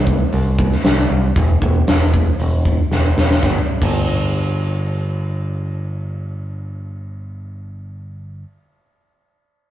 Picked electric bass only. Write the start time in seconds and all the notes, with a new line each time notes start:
Already playing: C2
0.33 C2
0.84 C2
1.10 C2
1.36 E1
1.62 E1
1.88 E1
2.40 E1
2.91 E1
3.17 E1
3.43 G1
3.82 G1